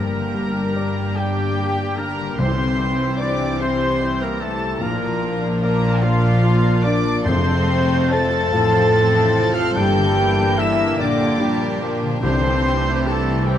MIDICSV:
0, 0, Header, 1, 12, 480
1, 0, Start_track
1, 0, Tempo, 813008
1, 1410, Time_signature, 6, 3, 24, 8
1, 3798, Tempo, 828729
1, 7939, End_track
2, 0, Start_track
2, 0, Title_t, "Violin section"
2, 0, Program_c, 0, 48
2, 0, Note_on_c, 0, 82, 114
2, 672, Note_off_c, 0, 82, 0
2, 687, Note_on_c, 0, 79, 117
2, 1167, Note_on_c, 0, 82, 121
2, 1170, Note_off_c, 0, 79, 0
2, 1406, Note_on_c, 0, 84, 122
2, 1408, Note_off_c, 0, 82, 0
2, 1881, Note_off_c, 0, 84, 0
2, 1887, Note_on_c, 0, 86, 115
2, 2126, Note_off_c, 0, 86, 0
2, 2130, Note_on_c, 0, 84, 121
2, 2490, Note_off_c, 0, 84, 0
2, 2491, Note_on_c, 0, 82, 112
2, 2605, Note_on_c, 0, 81, 127
2, 2610, Note_off_c, 0, 82, 0
2, 2841, Note_on_c, 0, 82, 111
2, 2844, Note_off_c, 0, 81, 0
2, 3309, Note_off_c, 0, 82, 0
2, 3316, Note_on_c, 0, 82, 123
2, 3549, Note_on_c, 0, 77, 126
2, 3552, Note_off_c, 0, 82, 0
2, 4028, Note_on_c, 0, 86, 127
2, 4031, Note_off_c, 0, 77, 0
2, 4270, Note_on_c, 0, 84, 127
2, 4275, Note_off_c, 0, 86, 0
2, 4757, Note_off_c, 0, 84, 0
2, 4768, Note_on_c, 0, 93, 127
2, 5585, Note_off_c, 0, 93, 0
2, 5606, Note_on_c, 0, 89, 127
2, 5725, Note_off_c, 0, 89, 0
2, 5725, Note_on_c, 0, 91, 127
2, 6194, Note_off_c, 0, 91, 0
2, 6203, Note_on_c, 0, 88, 127
2, 6442, Note_off_c, 0, 88, 0
2, 6445, Note_on_c, 0, 86, 118
2, 6916, Note_off_c, 0, 86, 0
2, 7158, Note_on_c, 0, 84, 127
2, 7617, Note_off_c, 0, 84, 0
2, 7633, Note_on_c, 0, 81, 118
2, 7873, Note_off_c, 0, 81, 0
2, 7874, Note_on_c, 0, 79, 106
2, 7939, Note_off_c, 0, 79, 0
2, 7939, End_track
3, 0, Start_track
3, 0, Title_t, "Flute section"
3, 0, Program_c, 1, 73
3, 0, Note_on_c, 1, 70, 101
3, 517, Note_off_c, 1, 70, 0
3, 684, Note_on_c, 1, 67, 107
3, 1161, Note_on_c, 1, 70, 99
3, 1168, Note_off_c, 1, 67, 0
3, 1402, Note_on_c, 1, 72, 105
3, 1405, Note_off_c, 1, 70, 0
3, 1882, Note_on_c, 1, 74, 116
3, 1889, Note_off_c, 1, 72, 0
3, 2126, Note_on_c, 1, 72, 106
3, 2128, Note_off_c, 1, 74, 0
3, 2481, Note_off_c, 1, 72, 0
3, 2490, Note_on_c, 1, 70, 100
3, 2609, Note_off_c, 1, 70, 0
3, 2610, Note_on_c, 1, 69, 92
3, 2842, Note_off_c, 1, 69, 0
3, 2844, Note_on_c, 1, 70, 98
3, 3310, Note_off_c, 1, 70, 0
3, 3317, Note_on_c, 1, 70, 113
3, 3553, Note_off_c, 1, 70, 0
3, 3555, Note_on_c, 1, 65, 119
3, 4029, Note_on_c, 1, 74, 111
3, 4034, Note_off_c, 1, 65, 0
3, 4274, Note_on_c, 1, 72, 119
3, 4275, Note_off_c, 1, 74, 0
3, 4769, Note_off_c, 1, 72, 0
3, 4771, Note_on_c, 1, 81, 127
3, 5429, Note_off_c, 1, 81, 0
3, 5602, Note_on_c, 1, 77, 116
3, 5716, Note_on_c, 1, 79, 124
3, 5723, Note_off_c, 1, 77, 0
3, 6190, Note_off_c, 1, 79, 0
3, 6199, Note_on_c, 1, 76, 127
3, 6434, Note_on_c, 1, 74, 108
3, 6440, Note_off_c, 1, 76, 0
3, 6911, Note_off_c, 1, 74, 0
3, 7150, Note_on_c, 1, 72, 120
3, 7613, Note_off_c, 1, 72, 0
3, 7639, Note_on_c, 1, 69, 110
3, 7876, Note_on_c, 1, 67, 94
3, 7881, Note_off_c, 1, 69, 0
3, 7939, Note_off_c, 1, 67, 0
3, 7939, End_track
4, 0, Start_track
4, 0, Title_t, "Oboe"
4, 0, Program_c, 2, 68
4, 0, Note_on_c, 2, 70, 97
4, 685, Note_on_c, 2, 67, 103
4, 694, Note_off_c, 2, 70, 0
4, 1171, Note_on_c, 2, 70, 99
4, 1180, Note_off_c, 2, 67, 0
4, 1409, Note_on_c, 2, 72, 110
4, 1417, Note_off_c, 2, 70, 0
4, 1895, Note_on_c, 2, 74, 108
4, 1904, Note_off_c, 2, 72, 0
4, 2129, Note_off_c, 2, 74, 0
4, 2133, Note_on_c, 2, 72, 120
4, 2492, Note_on_c, 2, 70, 105
4, 2501, Note_off_c, 2, 72, 0
4, 2604, Note_on_c, 2, 69, 106
4, 2613, Note_off_c, 2, 70, 0
4, 2840, Note_off_c, 2, 69, 0
4, 2844, Note_on_c, 2, 70, 104
4, 3220, Note_off_c, 2, 70, 0
4, 3320, Note_on_c, 2, 70, 107
4, 3555, Note_on_c, 2, 65, 113
4, 3564, Note_off_c, 2, 70, 0
4, 4031, Note_on_c, 2, 74, 127
4, 4040, Note_off_c, 2, 65, 0
4, 4269, Note_off_c, 2, 74, 0
4, 4273, Note_on_c, 2, 72, 122
4, 4773, Note_on_c, 2, 81, 127
4, 4781, Note_off_c, 2, 72, 0
4, 5597, Note_on_c, 2, 77, 116
4, 5606, Note_off_c, 2, 81, 0
4, 5728, Note_on_c, 2, 79, 127
4, 5737, Note_off_c, 2, 77, 0
4, 6203, Note_on_c, 2, 76, 120
4, 6212, Note_off_c, 2, 79, 0
4, 6442, Note_off_c, 2, 76, 0
4, 6445, Note_on_c, 2, 74, 106
4, 6907, Note_off_c, 2, 74, 0
4, 7155, Note_on_c, 2, 72, 127
4, 7639, Note_on_c, 2, 69, 110
4, 7648, Note_off_c, 2, 72, 0
4, 7890, Note_on_c, 2, 67, 96
4, 7899, Note_off_c, 2, 69, 0
4, 7939, Note_off_c, 2, 67, 0
4, 7939, End_track
5, 0, Start_track
5, 0, Title_t, "Harp"
5, 0, Program_c, 3, 46
5, 0, Note_on_c, 3, 43, 89
5, 79, Note_on_c, 3, 50, 62
5, 201, Note_on_c, 3, 55, 66
5, 321, Note_on_c, 3, 67, 64
5, 442, Note_on_c, 3, 74, 66
5, 557, Note_off_c, 3, 67, 0
5, 564, Note_on_c, 3, 67, 72
5, 683, Note_on_c, 3, 79, 83
5, 804, Note_on_c, 3, 86, 76
5, 919, Note_off_c, 3, 79, 0
5, 927, Note_on_c, 3, 79, 73
5, 1039, Note_off_c, 3, 67, 0
5, 1046, Note_on_c, 3, 67, 70
5, 1157, Note_off_c, 3, 55, 0
5, 1164, Note_on_c, 3, 55, 68
5, 1279, Note_off_c, 3, 50, 0
5, 1286, Note_on_c, 3, 50, 63
5, 1407, Note_on_c, 3, 48, 97
5, 1426, Note_off_c, 3, 86, 0
5, 1427, Note_off_c, 3, 50, 0
5, 1428, Note_off_c, 3, 43, 0
5, 1428, Note_off_c, 3, 74, 0
5, 1527, Note_on_c, 3, 60, 68
5, 1643, Note_off_c, 3, 55, 0
5, 1650, Note_on_c, 3, 55, 67
5, 1770, Note_on_c, 3, 64, 68
5, 1894, Note_on_c, 3, 72, 66
5, 2007, Note_off_c, 3, 67, 0
5, 2014, Note_on_c, 3, 67, 73
5, 2134, Note_on_c, 3, 76, 86
5, 2251, Note_on_c, 3, 84, 86
5, 2362, Note_off_c, 3, 76, 0
5, 2369, Note_on_c, 3, 76, 76
5, 2481, Note_off_c, 3, 67, 0
5, 2488, Note_on_c, 3, 67, 75
5, 2602, Note_off_c, 3, 64, 0
5, 2609, Note_on_c, 3, 64, 71
5, 2721, Note_off_c, 3, 60, 0
5, 2728, Note_on_c, 3, 60, 65
5, 2846, Note_on_c, 3, 46, 99
5, 2864, Note_off_c, 3, 67, 0
5, 2864, Note_off_c, 3, 76, 0
5, 2864, Note_off_c, 3, 79, 0
5, 2864, Note_off_c, 3, 84, 0
5, 2865, Note_off_c, 3, 48, 0
5, 2865, Note_off_c, 3, 55, 0
5, 2865, Note_off_c, 3, 64, 0
5, 2866, Note_off_c, 3, 60, 0
5, 2866, Note_off_c, 3, 72, 0
5, 2964, Note_on_c, 3, 53, 80
5, 3083, Note_on_c, 3, 58, 75
5, 3200, Note_on_c, 3, 65, 74
5, 3315, Note_on_c, 3, 74, 83
5, 3435, Note_on_c, 3, 70, 86
5, 3554, Note_on_c, 3, 77, 92
5, 3673, Note_on_c, 3, 86, 90
5, 3784, Note_off_c, 3, 77, 0
5, 3791, Note_on_c, 3, 77, 93
5, 3901, Note_off_c, 3, 70, 0
5, 3908, Note_on_c, 3, 70, 82
5, 4019, Note_off_c, 3, 65, 0
5, 4026, Note_on_c, 3, 65, 77
5, 4142, Note_off_c, 3, 53, 0
5, 4149, Note_on_c, 3, 53, 75
5, 4264, Note_on_c, 3, 41, 104
5, 4294, Note_off_c, 3, 70, 0
5, 4295, Note_off_c, 3, 74, 0
5, 4295, Note_off_c, 3, 86, 0
5, 4298, Note_off_c, 3, 46, 0
5, 4298, Note_off_c, 3, 58, 0
5, 4390, Note_on_c, 3, 48, 82
5, 4515, Note_on_c, 3, 60, 74
5, 4630, Note_off_c, 3, 65, 0
5, 4637, Note_on_c, 3, 65, 75
5, 4761, Note_on_c, 3, 72, 81
5, 4873, Note_off_c, 3, 65, 0
5, 4880, Note_on_c, 3, 65, 92
5, 4993, Note_off_c, 3, 77, 0
5, 4999, Note_on_c, 3, 77, 97
5, 5115, Note_on_c, 3, 84, 90
5, 5227, Note_off_c, 3, 77, 0
5, 5234, Note_on_c, 3, 77, 92
5, 5345, Note_off_c, 3, 72, 0
5, 5352, Note_on_c, 3, 72, 86
5, 5464, Note_off_c, 3, 65, 0
5, 5471, Note_on_c, 3, 65, 72
5, 5587, Note_off_c, 3, 48, 0
5, 5594, Note_on_c, 3, 48, 75
5, 5713, Note_on_c, 3, 43, 105
5, 5735, Note_off_c, 3, 41, 0
5, 5736, Note_off_c, 3, 65, 0
5, 5736, Note_off_c, 3, 72, 0
5, 5736, Note_off_c, 3, 77, 0
5, 5736, Note_off_c, 3, 84, 0
5, 5737, Note_off_c, 3, 60, 0
5, 5738, Note_off_c, 3, 48, 0
5, 5739, Note_off_c, 3, 53, 0
5, 5837, Note_on_c, 3, 50, 76
5, 5956, Note_on_c, 3, 58, 85
5, 6078, Note_on_c, 3, 62, 83
5, 6199, Note_on_c, 3, 67, 81
5, 6319, Note_on_c, 3, 70, 95
5, 6438, Note_on_c, 3, 74, 97
5, 6559, Note_on_c, 3, 79, 82
5, 6672, Note_off_c, 3, 74, 0
5, 6679, Note_on_c, 3, 74, 91
5, 6791, Note_off_c, 3, 70, 0
5, 6798, Note_on_c, 3, 70, 81
5, 6909, Note_off_c, 3, 62, 0
5, 6916, Note_on_c, 3, 62, 79
5, 7027, Note_off_c, 3, 50, 0
5, 7034, Note_on_c, 3, 50, 71
5, 7152, Note_on_c, 3, 48, 99
5, 7167, Note_off_c, 3, 43, 0
5, 7169, Note_off_c, 3, 58, 0
5, 7172, Note_off_c, 3, 50, 0
5, 7173, Note_off_c, 3, 62, 0
5, 7173, Note_off_c, 3, 70, 0
5, 7173, Note_off_c, 3, 74, 0
5, 7274, Note_on_c, 3, 55, 80
5, 7398, Note_on_c, 3, 60, 77
5, 7518, Note_on_c, 3, 64, 76
5, 7632, Note_off_c, 3, 67, 0
5, 7639, Note_on_c, 3, 67, 80
5, 7761, Note_on_c, 3, 72, 84
5, 7883, Note_on_c, 3, 76, 85
5, 7939, Note_off_c, 3, 48, 0
5, 7939, Note_off_c, 3, 55, 0
5, 7939, Note_off_c, 3, 60, 0
5, 7939, Note_off_c, 3, 64, 0
5, 7939, Note_off_c, 3, 67, 0
5, 7939, Note_off_c, 3, 72, 0
5, 7939, Note_off_c, 3, 76, 0
5, 7939, Note_off_c, 3, 79, 0
5, 7939, End_track
6, 0, Start_track
6, 0, Title_t, "Violin section"
6, 0, Program_c, 4, 48
6, 0, Note_on_c, 4, 62, 80
6, 0, Note_on_c, 4, 67, 82
6, 1388, Note_off_c, 4, 62, 0
6, 1408, Note_on_c, 4, 60, 83
6, 2840, Note_on_c, 4, 65, 86
6, 2841, Note_on_c, 4, 62, 91
6, 2846, Note_off_c, 4, 60, 0
6, 2847, Note_off_c, 4, 67, 0
6, 4252, Note_off_c, 4, 65, 0
6, 4253, Note_off_c, 4, 62, 0
6, 4272, Note_on_c, 4, 69, 105
6, 4274, Note_on_c, 4, 57, 104
6, 4984, Note_off_c, 4, 57, 0
6, 5003, Note_on_c, 4, 60, 109
6, 5720, Note_off_c, 4, 60, 0
6, 5724, Note_on_c, 4, 62, 96
6, 6415, Note_off_c, 4, 69, 0
6, 6428, Note_off_c, 4, 62, 0
6, 6440, Note_on_c, 4, 62, 103
6, 6440, Note_on_c, 4, 67, 96
6, 7143, Note_off_c, 4, 67, 0
6, 7150, Note_on_c, 4, 67, 100
6, 7857, Note_off_c, 4, 62, 0
6, 7865, Note_off_c, 4, 67, 0
6, 7875, Note_on_c, 4, 64, 90
6, 7876, Note_on_c, 4, 60, 90
6, 7939, Note_off_c, 4, 60, 0
6, 7939, Note_off_c, 4, 64, 0
6, 7939, End_track
7, 0, Start_track
7, 0, Title_t, "French horn section"
7, 0, Program_c, 5, 60
7, 0, Note_on_c, 5, 58, 94
7, 671, Note_off_c, 5, 58, 0
7, 690, Note_on_c, 5, 55, 98
7, 1171, Note_off_c, 5, 55, 0
7, 1173, Note_on_c, 5, 58, 104
7, 1411, Note_off_c, 5, 58, 0
7, 1412, Note_on_c, 5, 60, 96
7, 1891, Note_on_c, 5, 62, 100
7, 1894, Note_off_c, 5, 60, 0
7, 2133, Note_off_c, 5, 62, 0
7, 2133, Note_on_c, 5, 60, 102
7, 2484, Note_off_c, 5, 60, 0
7, 2492, Note_on_c, 5, 58, 94
7, 2610, Note_off_c, 5, 58, 0
7, 2611, Note_on_c, 5, 57, 112
7, 2846, Note_on_c, 5, 58, 94
7, 2847, Note_off_c, 5, 57, 0
7, 3229, Note_off_c, 5, 58, 0
7, 3329, Note_on_c, 5, 58, 120
7, 3559, Note_off_c, 5, 58, 0
7, 3566, Note_on_c, 5, 53, 108
7, 4039, Note_off_c, 5, 53, 0
7, 4040, Note_on_c, 5, 62, 122
7, 4281, Note_off_c, 5, 62, 0
7, 4283, Note_on_c, 5, 60, 112
7, 4764, Note_off_c, 5, 60, 0
7, 4777, Note_on_c, 5, 69, 127
7, 5596, Note_on_c, 5, 65, 109
7, 5606, Note_off_c, 5, 69, 0
7, 5719, Note_off_c, 5, 65, 0
7, 5725, Note_on_c, 5, 67, 122
7, 6194, Note_off_c, 5, 67, 0
7, 6199, Note_on_c, 5, 64, 124
7, 6439, Note_on_c, 5, 62, 103
7, 6440, Note_off_c, 5, 64, 0
7, 6913, Note_off_c, 5, 62, 0
7, 7144, Note_on_c, 5, 60, 117
7, 7611, Note_off_c, 5, 60, 0
7, 7635, Note_on_c, 5, 57, 101
7, 7880, Note_off_c, 5, 57, 0
7, 7881, Note_on_c, 5, 55, 89
7, 7939, Note_off_c, 5, 55, 0
7, 7939, End_track
8, 0, Start_track
8, 0, Title_t, "Grand piano"
8, 0, Program_c, 6, 0
8, 0, Note_on_c, 6, 43, 77
8, 79, Control_c, 6, 64, 127
8, 203, Note_on_c, 6, 55, 64
8, 448, Note_on_c, 6, 74, 68
8, 593, Note_off_c, 6, 55, 0
8, 691, Note_on_c, 6, 67, 65
8, 835, Note_off_c, 6, 74, 0
8, 931, Note_on_c, 6, 55, 67
8, 1076, Note_off_c, 6, 67, 0
8, 1169, Note_on_c, 6, 50, 68
8, 1314, Note_off_c, 6, 55, 0
8, 1386, Note_off_c, 6, 43, 0
8, 1409, Note_off_c, 6, 50, 0
8, 1410, Note_on_c, 6, 36, 83
8, 1421, Control_c, 6, 64, 0
8, 1505, Control_c, 6, 64, 127
8, 1646, Note_on_c, 6, 55, 74
8, 1890, Note_on_c, 6, 72, 75
8, 2035, Note_off_c, 6, 55, 0
8, 2128, Note_on_c, 6, 67, 75
8, 2276, Note_off_c, 6, 72, 0
8, 2367, Note_on_c, 6, 64, 77
8, 2513, Note_off_c, 6, 67, 0
8, 2605, Note_on_c, 6, 55, 69
8, 2749, Note_off_c, 6, 64, 0
8, 2823, Note_off_c, 6, 36, 0
8, 2839, Note_on_c, 6, 34, 87
8, 2844, Note_off_c, 6, 55, 0
8, 2856, Control_c, 6, 64, 0
8, 2944, Control_c, 6, 64, 127
8, 3081, Note_on_c, 6, 58, 73
8, 3321, Note_on_c, 6, 74, 81
8, 3463, Note_off_c, 6, 58, 0
8, 3557, Note_on_c, 6, 70, 75
8, 3703, Note_off_c, 6, 74, 0
8, 3795, Note_on_c, 6, 65, 85
8, 3940, Note_off_c, 6, 70, 0
8, 4037, Note_on_c, 6, 58, 78
8, 4179, Note_off_c, 6, 65, 0
8, 4252, Note_off_c, 6, 34, 0
8, 4275, Note_on_c, 6, 41, 105
8, 4279, Note_off_c, 6, 58, 0
8, 4289, Control_c, 6, 64, 0
8, 4380, Control_c, 6, 64, 127
8, 4528, Note_on_c, 6, 60, 79
8, 4771, Note_on_c, 6, 72, 82
8, 4916, Note_off_c, 6, 60, 0
8, 5007, Note_on_c, 6, 65, 86
8, 5151, Note_off_c, 6, 72, 0
8, 5243, Note_on_c, 6, 60, 87
8, 5387, Note_off_c, 6, 65, 0
8, 5477, Note_on_c, 6, 48, 79
8, 5626, Note_off_c, 6, 60, 0
8, 5698, Note_off_c, 6, 41, 0
8, 5719, Note_on_c, 6, 43, 102
8, 5720, Note_off_c, 6, 48, 0
8, 5735, Control_c, 6, 64, 0
8, 5824, Control_c, 6, 64, 127
8, 5960, Note_on_c, 6, 58, 71
8, 6198, Note_on_c, 6, 67, 85
8, 6345, Note_off_c, 6, 58, 0
8, 6437, Note_on_c, 6, 70, 81
8, 6582, Note_off_c, 6, 67, 0
8, 6676, Note_on_c, 6, 62, 84
8, 6818, Note_off_c, 6, 70, 0
8, 6913, Note_on_c, 6, 58, 75
8, 7056, Note_off_c, 6, 62, 0
8, 7128, Note_off_c, 6, 43, 0
8, 7152, Note_off_c, 6, 58, 0
8, 7155, Note_on_c, 6, 36, 101
8, 7163, Control_c, 6, 64, 0
8, 7247, Control_c, 6, 64, 127
8, 7398, Note_on_c, 6, 60, 69
8, 7636, Note_on_c, 6, 67, 77
8, 7786, Note_off_c, 6, 60, 0
8, 7883, Note_on_c, 6, 72, 72
8, 7939, Note_off_c, 6, 36, 0
8, 7939, Note_off_c, 6, 67, 0
8, 7939, Note_off_c, 6, 72, 0
8, 7939, End_track
9, 0, Start_track
9, 0, Title_t, "Viola section"
9, 0, Program_c, 7, 48
9, 0, Note_on_c, 7, 55, 80
9, 0, Note_on_c, 7, 58, 85
9, 1386, Note_off_c, 7, 55, 0
9, 1387, Note_off_c, 7, 58, 0
9, 1410, Note_on_c, 7, 52, 90
9, 1410, Note_on_c, 7, 55, 85
9, 2823, Note_off_c, 7, 52, 0
9, 2847, Note_off_c, 7, 55, 0
9, 2848, Note_on_c, 7, 58, 99
9, 2849, Note_on_c, 7, 53, 95
9, 4257, Note_off_c, 7, 53, 0
9, 4279, Note_off_c, 7, 58, 0
9, 4280, Note_on_c, 7, 53, 101
9, 4281, Note_on_c, 7, 60, 103
9, 4988, Note_off_c, 7, 53, 0
9, 4988, Note_off_c, 7, 60, 0
9, 5013, Note_on_c, 7, 60, 108
9, 5014, Note_on_c, 7, 53, 113
9, 5243, Note_off_c, 7, 53, 0
9, 5250, Note_on_c, 7, 53, 103
9, 5476, Note_off_c, 7, 53, 0
9, 5483, Note_on_c, 7, 53, 106
9, 5710, Note_off_c, 7, 60, 0
9, 5718, Note_off_c, 7, 53, 0
9, 5722, Note_on_c, 7, 58, 116
9, 5724, Note_on_c, 7, 52, 104
9, 6442, Note_off_c, 7, 52, 0
9, 6442, Note_on_c, 7, 50, 115
9, 6679, Note_off_c, 7, 50, 0
9, 6680, Note_on_c, 7, 55, 104
9, 6915, Note_off_c, 7, 55, 0
9, 6916, Note_on_c, 7, 53, 102
9, 7153, Note_off_c, 7, 58, 0
9, 7153, Note_on_c, 7, 52, 104
9, 7153, Note_on_c, 7, 57, 100
9, 7154, Note_off_c, 7, 53, 0
9, 7881, Note_off_c, 7, 57, 0
9, 7882, Note_on_c, 7, 55, 94
9, 7939, Note_off_c, 7, 52, 0
9, 7939, Note_off_c, 7, 55, 0
9, 7939, End_track
10, 0, Start_track
10, 0, Title_t, "Timpani"
10, 0, Program_c, 8, 47
10, 1409, Note_on_c, 8, 48, 127
10, 2109, Note_off_c, 8, 48, 0
10, 4275, Note_on_c, 8, 41, 127
10, 4985, Note_off_c, 8, 41, 0
10, 7152, Note_on_c, 8, 48, 125
10, 7857, Note_off_c, 8, 48, 0
10, 7939, End_track
11, 0, Start_track
11, 0, Title_t, "Cello section"
11, 0, Program_c, 10, 48
11, 0, Note_on_c, 10, 43, 88
11, 1386, Note_off_c, 10, 43, 0
11, 1408, Note_on_c, 10, 48, 89
11, 2822, Note_off_c, 10, 48, 0
11, 2846, Note_on_c, 10, 46, 98
11, 4255, Note_off_c, 10, 46, 0
11, 4281, Note_on_c, 10, 41, 107
11, 4988, Note_off_c, 10, 41, 0
11, 5008, Note_on_c, 10, 45, 111
11, 5721, Note_on_c, 10, 43, 107
11, 5722, Note_off_c, 10, 45, 0
11, 6427, Note_off_c, 10, 43, 0
11, 6439, Note_on_c, 10, 46, 100
11, 7137, Note_off_c, 10, 46, 0
11, 7153, Note_on_c, 10, 48, 105
11, 7939, Note_off_c, 10, 48, 0
11, 7939, End_track
12, 0, Start_track
12, 0, Title_t, "Double bass section"
12, 0, Program_c, 11, 48
12, 0, Note_on_c, 11, 31, 85
12, 1387, Note_off_c, 11, 31, 0
12, 1404, Note_on_c, 11, 36, 88
12, 2820, Note_off_c, 11, 36, 0
12, 2844, Note_on_c, 11, 34, 99
12, 4254, Note_off_c, 11, 34, 0
12, 4270, Note_on_c, 11, 29, 109
12, 4983, Note_off_c, 11, 29, 0
12, 5007, Note_on_c, 11, 33, 96
12, 5722, Note_off_c, 11, 33, 0
12, 5723, Note_on_c, 11, 31, 111
12, 6427, Note_off_c, 11, 31, 0
12, 6439, Note_on_c, 11, 34, 88
12, 7137, Note_off_c, 11, 34, 0
12, 7148, Note_on_c, 11, 36, 100
12, 7939, Note_off_c, 11, 36, 0
12, 7939, End_track
0, 0, End_of_file